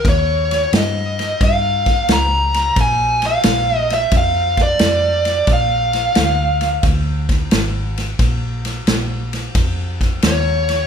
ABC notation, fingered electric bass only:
X:1
M:4/4
L:1/8
Q:"Swing" 1/4=88
K:Bbmix
V:1 name="Fingered electric bass" clef=bass
E,,2 G,,2 G,,2 _D,,2 | B,,,2 B,,,2 F,,2 F,,2 | B,,,2 D,,2 D,,2 A,,,2 | B,,,2 B,,,2 F,,2 E,,2 |]